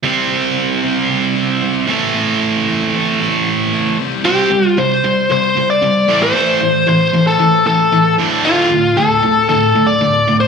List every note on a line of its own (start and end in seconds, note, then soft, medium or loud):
0.04 0.57 C3 medium
0.04 0.57 G3 medium
0.04 0.31 C4 medium
0.04 0.31 E4 medium
0.04 0.29 G4 medium
0.04 0.29 C5 medium
0.29 0.84 C4 soft
0.29 0.84 E4 soft
0.29 0.83 G4 soft
0.29 0.82 C5 medium
0.83 1.10 C4 soft
0.83 1.11 E4 soft
0.83 1.10 G4 medium
0.83 1.11 C5 medium
1.10 1.62 C3 medium
1.10 1.62 G3 medium
1.10 1.37 C4 medium
1.10 1.36 E4 medium
1.10 1.34 G4 medium
1.10 1.34 C5 medium
1.35 1.61 C4 soft
1.35 1.61 E4 soft
1.35 1.61 G4 medium
1.35 1.62 C5 medium
1.61 1.88 C4 medium
1.61 1.88 E4 medium
1.61 1.87 G4 medium
1.61 1.87 C5 medium
1.88 2.13 A2 medium
1.88 2.13 E3 medium
1.88 2.14 A3 medium
1.88 2.14 C4 medium
1.88 2.15 E4 medium
1.88 2.15 A4 medium
2.14 2.67 A2 medium
2.14 2.67 E3 medium
2.14 2.41 A3 medium
2.14 2.40 C4 medium
2.14 2.40 E4 medium
2.14 2.39 A4 medium
2.40 2.94 A3 soft
2.40 2.94 C4 soft
2.40 2.93 E4 soft
2.40 2.92 A4 medium
2.94 3.19 A3 soft
2.94 3.20 C4 soft
2.94 3.20 E4 medium
2.94 3.20 A4 medium
3.19 3.72 A2 medium
3.19 3.72 E3 medium
3.19 3.47 A3 medium
3.19 3.46 C4 medium
3.19 3.46 E4 medium
3.19 3.44 A4 medium
3.46 3.71 A3 soft
3.46 3.72 C4 soft
3.46 3.72 E4 medium
3.46 3.73 A4 medium
3.72 3.97 A3 medium
3.72 3.97 C4 medium
3.72 3.98 E4 medium
3.72 3.98 A4 medium
3.98 4.24 C3 medium
3.98 4.24 G3 medium
3.98 4.24 C4 medium
3.98 4.24 E4 medium
3.98 4.23 G4 medium
3.98 4.23 C5 medium
4.25 4.49 C3 medium
4.25 4.50 G3 medium
4.25 4.50 C4 medium
4.25 4.68 G4 medium
4.50 4.74 C3 medium
4.50 4.75 G3 medium
4.68 4.79 F4 medium
4.78 5.01 C3 medium
4.78 5.01 G3 medium
4.78 5.31 C5 medium
5.04 5.27 C3 medium
5.04 5.28 G3 medium
5.30 5.53 C3 medium
5.30 5.53 G3 medium
5.30 5.67 C5 medium
5.55 5.79 C3 medium
5.55 5.79 G3 medium
5.70 6.24 D5 medium
5.81 6.05 C3 medium
5.81 6.06 G3 medium
6.08 6.32 A2 medium
6.08 6.33 E3 medium
6.08 6.33 A3 medium
6.23 6.88 C5 medium
6.34 6.59 A2 medium
6.34 6.59 E3 medium
6.34 6.59 A3 medium
6.60 6.84 A2 medium
6.60 6.84 E3 medium
6.86 7.10 A2 medium
6.86 7.10 E3 medium
6.86 7.27 C5 medium
7.13 7.36 A2 medium
7.13 7.37 E3 medium
7.27 7.65 A4 medium
7.39 7.63 A2 medium
7.39 7.63 E3 medium
7.66 7.89 A2 medium
7.66 7.89 E3 medium
7.66 8.15 A4 medium
7.92 8.15 A2 medium
7.92 8.16 E3 medium
8.17 8.42 D2 medium
8.17 8.43 A2 medium
8.17 8.43 D3 medium
8.43 8.68 D2 medium
8.43 8.69 A2 medium
8.43 8.69 D3 medium
8.43 8.99 F4 medium
8.71 8.94 D2 medium
8.71 8.94 A2 medium
8.97 9.20 D2 medium
8.97 9.20 A2 medium
8.97 9.48 A4 medium
9.23 9.46 D2 medium
9.23 9.46 A2 medium
9.49 9.73 D2 medium
9.49 9.73 A2 medium
9.49 9.86 A4 medium
9.75 9.99 D2 medium
9.75 9.99 A2 medium
9.87 10.36 D5 medium
10.01 10.25 D2 medium
10.01 10.25 A2 medium
10.29 10.48 D2 medium
10.29 10.48 A2 medium
10.40 10.48 C5 medium